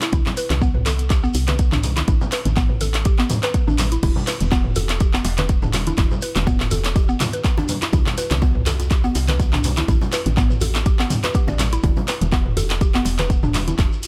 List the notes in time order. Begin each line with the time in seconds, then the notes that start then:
0.02 E4, clap, closed hi-hat, shekere
0.12 C2 E4, kick, closed hi-hat, high conga, shekere
0.26 clap, low conga, shekere
0.37 B4, open hi-hat, shekere
0.50 C2, clap, closed hi-hat, high conga, shekere
0.61 B3, kick, shekere
0.75 mid tom
0.86 A4, clap, open hi-hat, high conga, shekere
0.99 closed hi-hat, shekere
1.10 G4, kick, clap, closed hi-hat, shekere
1.24 B3, shekere
1.34 C2, open hi-hat, shekere
1.48 B4, clap, closed hi-hat, high conga, shekere
1.59 kick, closed hi-hat, shekere
1.72 D4, clap, mid tom, high conga, shekere
1.83 open hi-hat, low conga, shekere
1.97 E4, clap, closed hi-hat, high conga, shekere
2.08 A1 E4, kick, closed hi-hat, high conga, shekere
2.21 low conga, shekere
2.32 B4, clap, open hi-hat, shekere
2.45 A1, closed hi-hat, high conga, shekere
2.57 B3, kick, clap, closed hi-hat, mid tom, shekere
2.70 mid tom
2.81 A4, open hi-hat, high conga, shekere
2.94 clap, closed hi-hat, shekere
3.05 G4, kick, closed hi-hat, shekere
3.19 B3, clap, shekere
3.30 open hi-hat, mid tom, high conga, low conga, shekere
3.43 B4, clap, closed hi-hat, shekere
3.54 kick, closed hi-hat, shekere
3.67 A1 D4, high conga, shekere
3.78 clap, open hi-hat, low conga, shekere
3.91 E4, closed hi-hat, shekere
4.03 E1 E4, kick, closed hi-hat, crash, high conga, djembe bass, shekere
4.16 djembe tone, low conga, shekere
4.27 B4, clap, open hi-hat, shekere
4.40 E1, closed hi-hat, high conga, shekere
4.51 B3, kick, clap, djembe slap, djembe tone, shekere
4.65 mid tom
4.76 A4, open hi-hat, djembe tone, high conga, djembe bass, shekere
4.89 clap, closed hi-hat, shekere
5.00 G4, kick, closed hi-hat, shekere
5.13 B3, clap, djembe tone, shekere
5.25 E1, open hi-hat, djembe slap, shekere
5.37 B4, clap, closed hi-hat, high conga, djembe tone, shekere
5.49 kick, closed hi-hat, shekere
5.62 D4, mid tom, high conga, shekere
5.73 clap, open hi-hat, djembe tone, low conga, shekere
5.87 E4, closed hi-hat, high conga, shekere
5.97 E1 E4, kick, clap, closed hi-hat, djembe tone, high conga, djembe bass, shekere
6.11 low conga, shekere
6.22 B4, open hi-hat, shekere
6.36 E1, clap, closed hi-hat, djembe tone, high conga, shekere
6.47 B3, kick, mid tom, djembe slap, shekere
6.60 clap, mid tom, djembe tone, shekere
6.71 A4, open hi-hat, high conga, djembe bass, shekere
6.85 clap, closed hi-hat, shekere
6.96 G4, kick, closed hi-hat, djembe tone, shekere
7.09 B3, shekere
7.20 clap, open hi-hat, mid tom, djembe tone, high conga, low conga, shekere
7.33 B4, closed hi-hat, shekere
7.45 kick, clap, closed hi-hat, shekere
7.58 D4, djembe slap, djembe tone, high conga, shekere
7.68 open hi-hat, low conga, shekere
7.82 E4, clap, closed hi-hat, djembe tone, shekere
7.93 C2 E4, kick, closed hi-hat, high conga, djembe bass, shekere
8.06 clap, low conga, shekere
8.18 B4, open hi-hat, djembe tone, shekere
8.31 C2, clap, closed hi-hat, high conga, shekere
8.42 B3, kick, djembe slap, djembe tone, shekere
8.55 mid tom
8.66 A4, clap, open hi-hat, high conga, djembe bass, shekere
8.80 closed hi-hat, djembe tone, shekere
8.91 G4, kick, clap, closed hi-hat, shekere
9.04 B3, djembe tone, shekere
9.15 C2, open hi-hat, djembe slap, shekere
9.28 B4, clap, closed hi-hat, high conga, shekere
9.40 kick, closed hi-hat, djembe tone, shekere
9.52 D4, clap, mid tom, high conga, shekere
9.64 open hi-hat, djembe tone, low conga, shekere
9.77 E4, clap, closed hi-hat, high conga, shekere
9.88 A1 E4, kick, closed hi-hat, high conga, djembe bass, shekere
10.01 djembe tone, low conga, shekere
10.12 B4, clap, open hi-hat, shekere
10.25 A1, closed hi-hat, djembe tone, high conga, shekere
10.37 B3, kick, clap, mid tom, djembe slap, shekere
10.50 mid tom, shekere
10.61 A4, open hi-hat, djembe tone, high conga, djembe bass, shekere
10.75 clap, closed hi-hat, shekere
10.85 G4, kick, closed hi-hat, djembe tone, shekere
10.99 B3, clap, shekere
11.10 open hi-hat, mid tom, high conga, low conga, shekere
11.24 B4, clap, closed hi-hat, djembe tone, shekere
11.34 G4, kick, closed hi-hat, shekere
11.47 A1 D5, djembe slap, high conga, djembe tone, shekere
11.59 clap, open hi-hat, low conga, shekere
11.72 E4, closed hi-hat, shekere
11.83 E1 E4, kick, closed hi-hat, high conga, djembe bass, shekere
11.96 djembe tone, low conga, shekere
12.08 B4, clap, open hi-hat, shekere
12.21 E1, closed hi-hat, high conga, shekere
12.32 B3, kick, clap, djembe slap, djembe tone, shekere
12.46 mid tom
12.57 A4, open hi-hat, high conga, djembe tone, djembe bass, shekere
12.70 clap, closed hi-hat, shekere
12.81 G4, kick, closed hi-hat, shekere
12.94 B3, clap, djembe tone, shekere
13.05 E1, open hi-hat, djembe slap, shekere
13.19 B4, clap, closed hi-hat, high conga, djembe tone, shekere
13.30 kick, closed hi-hat, shekere
13.43 D4, mid tom, high conga, shekere
13.54 clap, open hi-hat, djembe tone, low conga, shekere
13.68 E4, closed hi-hat, high conga, shekere
13.79 E1, kick, clap, closed hi-hat, djembe tone, djembe bass, shekere
13.92 shekere
14.03 open hi-hat, shekere